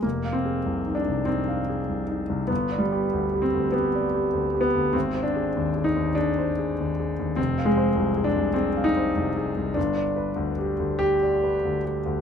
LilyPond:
\new Staff \with { instrumentName = "Grand piano" } { \time 4/4 \key f \dorian \tempo 4 = 98 << { \tuplet 3/2 { f,,8 f''8 aes'8 c,8 ees'8 c,8 ees'8 f''8 aes'8 c,8 ees'8 c,8 } | \tuplet 3/2 { g,,8 d''8 g'8 d,8 g'8 d,8 g'8 d''8 g'8 d,8 g'8 d,8 } | \tuplet 3/2 { aes,,8 c''8 aes'8 ees,8 aes'8 ees,8 aes'8 c''8 aes'8 ees,8 aes'8 ees,8 } | \tuplet 3/2 { f,,8 f''8 c''8 c,8 aes'8 c,8 aes'8 f''8 c''8 c,8 aes'8 c,8 } |
\tuplet 3/2 { g,,8 d''8 b'8 d,8 g'8 d,8~ d,8 d''8 b'8 d,8 g'8 d,8 } | } \\ { bes8 c'4 d'8 c'2 | b8 g4 c'8 b4. b8 | c'8 d'4 ees'8 d'2 | c'8 aes4 d'8 c'8 ees'4. |
d'2 g'2 | } >> }